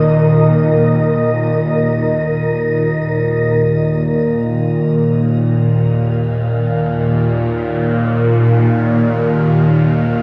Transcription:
Already playing: synth drone D#2 A#2, ambient pad D#4 A#4 D#5, synth texture A#4
3.65 synth drone D#2 A#2, synth texture F5

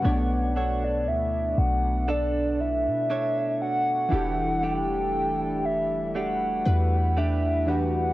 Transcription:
Already playing: clean electric guitar C#4 G4, soft synth lead F#5
0.02 808-style bass B1, synth keys B2 A3, analog synth pad A3 B3 D4, clean electric guitar B3 C#5
0.06 synth keys D4 D5
0.56 clean electric guitar D4 A4 C#5, soft synth lead F#5
0.84 soft synth lead D5
1.07 808-style bass D2, soft synth lead E5
1.58 808-style bass B1, soft synth lead F#5
2.08 clean electric guitar D4 A4, synth pluck A4, soft synth lead D5
2.60 soft synth lead E5
2.87 808-style bass B2
3.10 clean electric guitar D4 A4 C#5
3.62 soft synth lead F#5
4.09 808-style bass E1, synth keys E3 D4 E4, clean electric guitar E3 G4, analog synth pad E3 G3 E4 A4
4.13 synth keys G4 A4
4.63 clean electric guitar A3 D4 G4, soft synth lead G5
5.65 soft synth lead E5
6.15 clean electric guitar A3 D4 G4, analog synth pad B4, soft synth lead F#5
6.66 808-style bass E2, synth pluck B4
7.17 clean electric guitar A3 D4 G4, soft synth lead E5
7.66 synth keys E3 D4 F#4 G4 B4, soft synth lead F#5

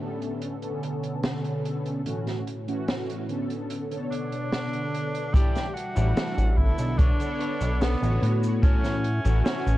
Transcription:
Already playing: ambient pad A2 A3 G4 E5
0.00 analog polysynth D3 B3 C#4 A4
0.22 closed hi-hat
0.41 ambient pad B2 D3 C#5, closed hi-hat
0.61 analog polysynth D3 B3 C#4 A4, closed hi-hat
0.83 closed hi-hat
1.03 closed hi-hat
1.22 analog polysynth D3 B3 C#4 A4, snare, closed hi-hat
1.44 closed hi-hat
1.65 closed hi-hat
1.86 closed hi-hat
2.05 analog polysynth A2 E3 A3 C#4 F#4, ambient pad A2 E4, closed hi-hat
2.27 snare, closed hi-hat
2.47 closed hi-hat
2.67 analog polysynth A2 E3 A3 C#4 F#4, closed hi-hat
2.88 snare, closed hi-hat
3.10 closed hi-hat
3.28 analog polysynth D3 B3 C#4 A4, closed hi-hat
3.50 closed hi-hat
3.70 ambient pad B2 D3, closed hi-hat
3.90 analog polysynth D3 B3 A4 C#5, closed hi-hat
4.11 tenor saxophone D4, closed hi-hat
4.32 closed hi-hat
4.52 analog polysynth D3 B3 A4 C#5, snare, closed hi-hat
4.73 closed hi-hat
4.95 closed hi-hat
5.15 closed hi-hat
5.34 analog polysynth E3 A3 D4 G4, ambient pad G3 E5 A5, clean electric guitar E4 G4 A4 D5, tenor saxophone G4, kick, closed hi-hat, cabasa
5.55 snare, closed hi-hat, cabasa
5.74 tenor saxophone F#4, closed hi-hat
5.96 analog synth bass A1, analog polysynth E3 G3 A3 D4, clean electric guitar E4 G4 A4 D5, closed hi-hat, cabasa
6.17 snare, closed hi-hat, cabasa
6.38 analog synth bass A1, closed hi-hat, cabasa
6.57 analog polysynth D3 B3 A4, tenor saxophone E4, kick
6.78 analog synth bass B1, closed hi-hat, cabasa
6.98 tenor saxophone D4, clean electric guitar D4 A4 B4 C#5, ambient pad A4 C#5 B5, kick, closed hi-hat, cabasa
7.19 analog polysynth D3 B3 A4 C#5, closed hi-hat, cabasa
7.39 clean electric guitar D4 A4 B4 C#5, closed hi-hat
7.61 analog synth bass B1, closed hi-hat, cabasa
7.80 analog polysynth D3 B3 C#4 A4, tenor saxophone B3, snare, closed hi-hat, cabasa
8.01 analog synth bass A1, analog polysynth D3 B3 F#4 C#5, closed hi-hat, cabasa
8.22 analog synth bass A2, closed hi-hat
8.43 closed hi-hat, cabasa
8.62 analog polysynth E3 A3 C#4, tenor saxophone C#4, clean electric guitar E4 F#4 A4 C#5, ambient pad E5 F#5 C#6, kick, closed hi-hat, cabasa
8.84 snare, closed hi-hat, cabasa
9.04 closed hi-hat
9.25 analog synth bass A1, analog polysynth E3 A3 C#4 F#4, clean electric guitar E4 F#4 A4 C#5, closed hi-hat, cabasa
9.44 tenor saxophone C#4, snare, closed hi-hat, cabasa
9.67 analog synth bass A1, closed hi-hat, cabasa

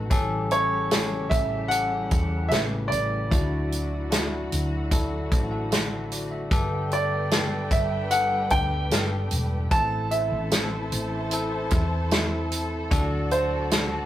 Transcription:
Already playing: string section A3, tine electric piano B3 D#4 A4
0.09 fretless electric bass A1, tine electric piano A2 E3 C#4 G4 A4, string section C#3 G3 E4 G4, kick, closed hi-hat
0.51 grand piano C#5, closed hi-hat
0.91 tine electric piano C#4 G4 A4, snare, closed hi-hat
1.30 fretless electric bass A1, grand piano E5, kick, closed hi-hat
1.68 tine electric piano C#4 G4 A4, grand piano F#5, closed hi-hat
2.11 fretless electric bass E2, kick, closed hi-hat
2.49 fretless electric bass A1, tine electric piano C#3 G4 B4, grand piano E5, snare, closed hi-hat
2.88 fretless electric bass A1, grand piano D5, closed hi-hat
3.31 fretless electric bass D2, tine electric piano A2 D4 E4 F#4, string section D3 F#3 A3 F#4, kick, closed hi-hat
3.72 closed hi-hat
4.11 tine electric piano D4 E4 F#4, snare, closed hi-hat
4.52 fretless electric bass D2, closed hi-hat
4.91 tine electric piano D4 E4 A4, kick, closed hi-hat
5.31 fretless electric bass A1, tine electric piano C5 A5, kick, closed hi-hat
5.51 tine electric piano A4 F#5
5.71 tine electric piano E5, snare, closed hi-hat
6.12 tine electric piano F#4 D5, closed hi-hat
6.31 tine electric piano E5
6.51 fretless electric bass G1, tine electric piano G2 D3 B3 G4 A4, string section G3 B3 G4, violin section D4 B4 G5, kick, closed hi-hat
6.91 grand piano D5, closed hi-hat
7.31 tine electric piano B3 G4 A4, snare, closed hi-hat
7.71 fretless electric bass G1, grand piano E5, kick, closed hi-hat
8.11 tine electric piano B3 G4 A4, grand piano F#5, closed hi-hat
8.50 fretless electric bass D2, grand piano G5, kick, closed hi-hat
8.91 fretless electric bass G1, tine electric piano B3 G4 A4, snare, closed hi-hat
9.31 fretless electric bass E1, closed hi-hat
9.71 fretless electric bass A1, tine electric piano A2 E3 C4 E4 A4, string section C3 E3 E4 A4, violin section E4 C5 A5, grand piano A5, kick, closed hi-hat
10.11 grand piano E5, closed hi-hat
10.32 fretless electric bass A1
10.51 tine electric piano C4 E4 A4, snare, closed hi-hat
10.92 fretless electric bass A1, closed hi-hat
11.31 tine electric piano C4 E4 A4, closed hi-hat
11.71 fretless electric bass E2, kick, closed hi-hat
12.11 tine electric piano C4 E4 C5, snare, closed hi-hat
12.52 closed hi-hat
12.91 fretless electric bass D2, tine electric piano A2 D4 F#4 A4, string section D3 F#3 A3 F#4, violin section F#4 D5 A5, kick, closed hi-hat
13.31 grand piano C5, closed hi-hat
13.71 tine electric piano D4 F#4 A4, snare, closed hi-hat

